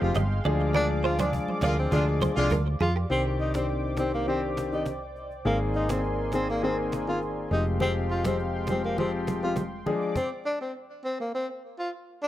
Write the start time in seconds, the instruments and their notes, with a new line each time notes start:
Already playing: analog synth pad G#3 F5 G5 C6
0.01 fingered electric bass F1, grand piano F3 G#3 C4 G4, tenor saxophone F4, cajon slap
0.15 fingered electric bass G1, clean electric guitar D#5, cajon slap, high conga, low conga
0.31 cajon slap
0.45 fingered electric bass D2, grand piano F3 G#3 D4 G#4, analog synth pad D5 D6, clean electric guitar D5, low conga
0.60 cajon slap
0.74 grand piano F3 G#3 D4 G#4, tenor saxophone D4, clean electric guitar A#4, low conga
0.90 cajon slap
1.04 tenor saxophone F4, clean electric guitar C5, cajon slap
1.19 grand piano F3 G#3 D4 G#4, tenor saxophone D4, clean electric guitar C5, cajon slap, high conga
1.33 cajon bass
1.48 high conga
1.61 fingered electric bass D2, horn section D3 G#3 F4, grand piano F3 G#3 D4 G#4, tenor saxophone A#3, clean electric guitar D5, cajon bass, cajon slap, high conga
1.78 tenor saxophone C4, cajon slap
1.92 fingered electric bass D2, horn section D3 G#3 F4, grand piano F3 G#3 D4 G#4, tenor saxophone D4, cajon bass, low conga
2.21 clean electric guitar C5, cajon bass, cajon slap, high conga
2.36 fingered electric bass C2, horn section D3 G#3 F4, grand piano F3 G#3 D4 G#4, tenor saxophone D4
2.50 fingered electric bass D2, clean electric guitar A#4, cajon bass, cajon slap, high conga, low conga
2.66 cajon slap
2.81 fingered electric bass F2, tenor saxophone F4, clean electric guitar G#4, low conga
2.95 clean electric guitar G4, cajon slap
3.10 fingered electric bass C2, grand piano D#3 C4 D4 G4, tenor saxophone C4, analog synth pad C5 D5 G5 D6, cajon slap
3.39 tenor saxophone D#4, cajon slap
3.54 grand piano D#3 C4 D4 G4, tenor saxophone C4, cajon slap
3.69 cajon slap
3.97 grand piano D#3 C4 D4 G4, tenor saxophone C4, cajon slap
4.13 tenor saxophone A#3, cajon slap
4.27 grand piano D#3 C4 D4 G4, tenor saxophone C4, cajon slap
4.57 cajon slap
4.72 grand piano D#3 C4 D4 G4, tenor saxophone D#4, cajon slap
4.85 cajon slap
5.16 cajon slap
5.31 cajon slap
5.45 fingered electric bass G#1, grand piano D#3 A#3 C4 G#4, tenor saxophone A#3, analog synth pad A#4 G#5 C6, cajon slap
5.75 tenor saxophone D#4, cajon slap
5.89 grand piano D#3 A#3 C4 G#4, tenor saxophone C4, cajon slap
6.04 cajon slap
6.32 grand piano D#3 A#3 C4 G#4, tenor saxophone C4, cajon slap
6.49 tenor saxophone A#3, cajon slap
6.62 grand piano D#3 A#3 C4 G#4, tenor saxophone C4, cajon slap
6.92 cajon slap
7.07 grand piano D#3 A#3 C4 G#4, tenor saxophone F4, cajon slap
7.21 cajon slap
7.51 fingered electric bass F1, grand piano F3 G#3 C4 G4, analog synth pad G#3 F5 G5 C6, tenor saxophone D#4, cajon slap
7.66 cajon slap
7.80 grand piano F3 G#3 C4 G4, tenor saxophone C4, cajon slap, low conga
8.10 tenor saxophone F4, cajon slap
8.24 grand piano F3 G#3 C4 G4, tenor saxophone C4, cajon slap, high conga
8.39 cajon slap
8.67 grand piano F3 G#3 C4 G4, tenor saxophone C4, cajon slap, high conga
8.84 tenor saxophone A#3, cajon slap
8.98 grand piano F3 G#3 C4 G4, tenor saxophone C4, cajon slap, low conga
9.27 cajon slap, high conga
9.42 grand piano F3 G#3 C4 G4, tenor saxophone F4, cajon slap
9.56 cajon slap, high conga, low conga
9.86 grand piano F3 G#3 D4 G#4, analog synth pad D5 D6, cajon slap, low conga
10.01 cajon slap
10.16 tenor saxophone C4, cajon bass, cajon slap
10.46 tenor saxophone D4
10.61 tenor saxophone C4
11.05 tenor saxophone C4
11.20 tenor saxophone A#3
11.34 tenor saxophone C4
11.79 tenor saxophone F4
12.23 tenor saxophone D4